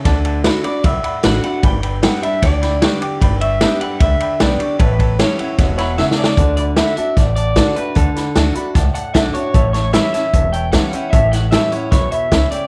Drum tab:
RD |x--x--x--x--x--x--x--x--|x--x--x--x--x--x--x--x--|x--x--x--x--x--x--x--x--|x--x--x--x--x--x--------|
HH |------------------------|------------------------|------------------------|------------------------|
SD |o-----o-----------o-----|------o-----o--o--o-----|------o-----------o-----|------o-----o--o--o-o-o-|
BD |o-----------o-----------|o-----------o-----------|o-----------o-----------|o--o--------o-----------|

RD |------------------------|------------------------|------------------------|------------------------|
HH |x--x--x--x--x--x--x--x--|x--x--x--x--x--x--x--x--|x--x--x--x--x--x--x--x--|x--x--x--x--x--x--x--x--|
SD |------o-----o-----o-----|---o--o-----o-----o-----|---o--o--o--------o-----|---o--o-----o-----o-----|
BD |o-----------o-----o-----|o-----------o-----o-----|o-----------o-----o-----|o-----------o-----o-----|